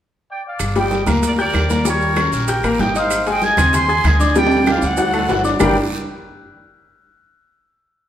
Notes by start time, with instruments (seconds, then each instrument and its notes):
0.30 trumpet section D5 G5
0.45 trumpet section D5 F5
0.59 upright bass G1, high bongo, high conga, high timbale, long guiro, claves, maracas
0.75 grand piano G3 G4 G5, trumpet section D#5 G5, high bongo, high timbale, maracas
0.91 high bongo, high conga, short guiro, maracas
1.06 upright bass D2, grand piano A#3 A#4 A#5, high conga, low conga, high timbale, short guiro, claves, maracas
1.23 trumpet section A#4 D5, high bongo, high conga, high timbale, long guiro, maracas
1.38 grand piano G4 G5 G6, trumpet section A#4 D5, high conga, maracas
1.54 upright bass D#2, high bongo, low bongo, high conga, high timbale, low timbale, short guiro, claves, maracas
1.70 grand piano A#3 A#4 A#5, high bongo, high conga, short guiro, maracas
1.85 grand piano G3 G4 G5, trumpet section A#4 C#5, high bongo, high timbale, long guiro, maracas
2.01 high bongo, high conga, maracas
2.16 grand piano C#4 C#5 C#6, high bongo, high conga, high timbale, short guiro, claves, maracas
2.32 upright bass A#1, trumpet section G4 A#4, high bongo, high conga, short guiro, maracas
2.48 grand piano G4 G5 G6, high bongo, high conga, high timbale, long guiro, maracas
2.64 upright bass A1, grand piano A#3 A#4 A#5, high conga, high timbale, claves, maracas
2.79 upright bass G#1, grand piano G4 G5 G6, trumpet section D#5 G5, high bongo, low bongo, high conga, low timbale, short guiro, maracas
2.95 grand piano D#4 D#5 D#6, trumpet section C5 F5, high bongo, high conga, high timbale, short guiro, maracas
3.10 high bongo, high conga, high timbale, long guiro, claves, maracas
3.26 grand piano G#3 G#4 G#5, trumpet section D#5 G5, high bongo, high conga, high timbale, maracas
3.42 trumpet section D#5 G#5, high bongo, high conga, short guiro, maracas
3.57 upright bass D#2, grand piano C4 C5 C6, high bongo, high conga, low conga, high timbale, short guiro, claves, maracas
3.73 trumpet section G#5 C6, high bongo, high conga, low conga, high timbale, long guiro, maracas
3.88 grand piano G#4 G#5 G#6, high conga, maracas
4.04 upright bass D2, trumpet section D#5 G#5, high bongo, low bongo, high conga, high timbale, short guiro, claves, maracas
4.20 grand piano D4 D5 D6, high bongo, high conga, short guiro, maracas
4.35 grand piano G3 G4 G5, trumpet section D5 G5, high bongo, high timbale, maracas
4.47 high timbale
4.51 maracas
4.57 high timbale
4.66 grand piano G4 G5 G6, trumpet section D5 F5, high bongo, high conga, high timbale, short guiro, claves, maracas
4.77 low timbale
4.82 upright bass D2, trumpet section D5 F#5, high bongo, high conga, short guiro, maracas
4.97 grand piano F#4 F#5 F#6, high bongo, low timbale, long guiro, maracas
5.08 low timbale
5.13 grand piano A3 A4 A5, high conga, claves, maracas
5.19 low timbale
5.29 upright bass G1, grand piano F#4 F#5 F#6, high bongo, low bongo, high conga, low timbale, short guiro, maracas
5.39 low timbale
5.44 grand piano D4 D5 D6, high conga, short guiro, maracas
5.49 low timbale
5.60 upright bass G1, grand piano G3 D4 G4 A#4 D5 G5, trumpet section G5, low bongo, low conga, low timbale, long guiro, claves, maracas